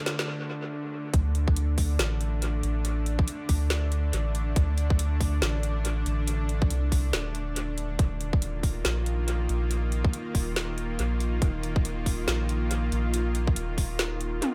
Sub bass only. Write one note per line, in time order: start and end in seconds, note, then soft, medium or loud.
1.14 1.98 D2 loud
1.99 2.62 A1 loud
2.63 3.26 A1 loud
3.49 4.12 D2 loud
4.14 4.55 A1 loud
4.56 5.41 D2 loud
5.42 6.05 A1 loud
6.06 6.69 A1 medium
6.71 7.12 C2 loud
7.13 7.98 D#1 loud
7.99 8.83 D#1 loud
8.85 9.48 A#1 loud
9.49 10.12 A#1 loud
10.35 10.98 D#1 loud
10.99 11.41 A#1 medium
11.42 12.26 D#1 medium
12.28 12.91 A#1 loud
12.92 13.55 A#1 medium
13.56 14.41 D#1 medium